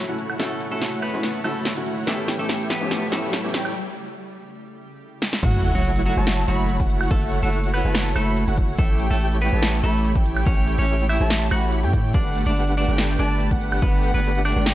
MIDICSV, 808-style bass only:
0, 0, Header, 1, 2, 480
1, 0, Start_track
1, 0, Tempo, 419580
1, 452, Time_signature, 4, 2, 24, 8
1, 16863, End_track
2, 0, Start_track
2, 0, Title_t, "808-style bass"
2, 0, Program_c, 0, 38
2, 98, Note_on_c, 0, 30, 96
2, 429, Note_off_c, 0, 30, 0
2, 453, Note_on_c, 0, 30, 92
2, 793, Note_off_c, 0, 30, 0
2, 818, Note_on_c, 0, 30, 91
2, 1273, Note_off_c, 0, 30, 0
2, 1298, Note_on_c, 0, 30, 102
2, 1629, Note_off_c, 0, 30, 0
2, 1652, Note_on_c, 0, 30, 98
2, 1993, Note_off_c, 0, 30, 0
2, 2017, Note_on_c, 0, 30, 96
2, 2349, Note_off_c, 0, 30, 0
2, 2373, Note_on_c, 0, 33, 94
2, 2713, Note_off_c, 0, 33, 0
2, 2737, Note_on_c, 0, 33, 90
2, 3192, Note_off_c, 0, 33, 0
2, 3217, Note_on_c, 0, 33, 97
2, 3549, Note_off_c, 0, 33, 0
2, 3571, Note_on_c, 0, 33, 100
2, 3912, Note_off_c, 0, 33, 0
2, 3937, Note_on_c, 0, 33, 99
2, 4269, Note_off_c, 0, 33, 0
2, 6212, Note_on_c, 0, 30, 98
2, 6553, Note_off_c, 0, 30, 0
2, 6578, Note_on_c, 0, 30, 92
2, 7033, Note_off_c, 0, 30, 0
2, 7057, Note_on_c, 0, 30, 102
2, 7389, Note_off_c, 0, 30, 0
2, 7412, Note_on_c, 0, 30, 101
2, 7753, Note_off_c, 0, 30, 0
2, 7778, Note_on_c, 0, 30, 102
2, 8109, Note_off_c, 0, 30, 0
2, 8132, Note_on_c, 0, 30, 99
2, 8473, Note_off_c, 0, 30, 0
2, 8498, Note_on_c, 0, 30, 88
2, 8953, Note_off_c, 0, 30, 0
2, 8977, Note_on_c, 0, 30, 101
2, 9309, Note_off_c, 0, 30, 0
2, 9330, Note_on_c, 0, 30, 101
2, 9672, Note_off_c, 0, 30, 0
2, 9696, Note_on_c, 0, 30, 99
2, 10028, Note_off_c, 0, 30, 0
2, 10051, Note_on_c, 0, 33, 95
2, 10392, Note_off_c, 0, 33, 0
2, 10417, Note_on_c, 0, 33, 93
2, 10872, Note_off_c, 0, 33, 0
2, 10898, Note_on_c, 0, 33, 98
2, 11230, Note_off_c, 0, 33, 0
2, 11252, Note_on_c, 0, 33, 104
2, 11593, Note_off_c, 0, 33, 0
2, 11617, Note_on_c, 0, 33, 98
2, 11949, Note_off_c, 0, 33, 0
2, 11971, Note_on_c, 0, 33, 96
2, 12313, Note_off_c, 0, 33, 0
2, 12338, Note_on_c, 0, 33, 93
2, 12793, Note_off_c, 0, 33, 0
2, 12818, Note_on_c, 0, 33, 99
2, 13149, Note_off_c, 0, 33, 0
2, 13172, Note_on_c, 0, 33, 98
2, 13539, Note_on_c, 0, 45, 102
2, 13556, Note_off_c, 0, 33, 0
2, 13892, Note_on_c, 0, 31, 99
2, 13909, Note_off_c, 0, 45, 0
2, 14233, Note_off_c, 0, 31, 0
2, 14258, Note_on_c, 0, 31, 92
2, 14713, Note_off_c, 0, 31, 0
2, 14739, Note_on_c, 0, 31, 99
2, 15070, Note_off_c, 0, 31, 0
2, 15092, Note_on_c, 0, 31, 101
2, 15433, Note_off_c, 0, 31, 0
2, 15458, Note_on_c, 0, 31, 98
2, 15789, Note_off_c, 0, 31, 0
2, 15813, Note_on_c, 0, 31, 100
2, 16153, Note_off_c, 0, 31, 0
2, 16179, Note_on_c, 0, 31, 95
2, 16633, Note_off_c, 0, 31, 0
2, 16659, Note_on_c, 0, 31, 100
2, 16863, Note_off_c, 0, 31, 0
2, 16863, End_track
0, 0, End_of_file